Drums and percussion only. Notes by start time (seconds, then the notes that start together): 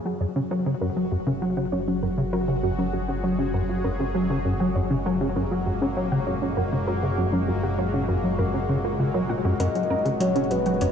9.60 closed hi-hat
9.75 closed hi-hat
10.06 closed hi-hat
10.21 closed hi-hat
10.36 closed hi-hat
10.51 closed hi-hat
10.66 closed hi-hat
10.81 closed hi-hat